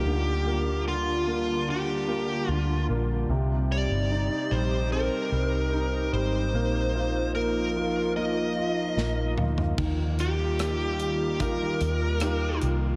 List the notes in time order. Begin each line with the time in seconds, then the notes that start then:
Already playing: A#3 F4 G4
0.05 D2 D3 G3
0.46 A#3
0.86 D3 F4
1.27 A#3
1.68 D3 G4
2.07 A#3
2.48 D2 D3 F4
2.89 A#1 A#3
3.29 C2 C3 C4 D#4 G4
3.70 G3 D5
3.90 G1
4.12 D#4
4.51 A#1 G3 C5
4.92 C4 A#4
5.32 C2 G3
5.73 D#4
6.13 G#1 G3 C5
6.53 A#1 F3 A#3 F4
6.95 F4
7.35 A#3 A#4
7.76 F4
8.16 A#3 D#5
8.56 F4
8.97 A#1 A#3, snare
9.38 D2 F4, mid tom
9.58 floor tom
9.78 D#2 D#3 G3 A#3 F4, kick, crash
10.19 G4, closed hi-hat
10.59 cross-stick, closed hi-hat
11.00 closed hi-hat
11.40 D#4 F4 G4 A#4, kick, closed hi-hat
11.81 D#2, closed hi-hat
12.20 D#4 F4 G4, cross-stick, closed hi-hat
12.62 C2, closed hi-hat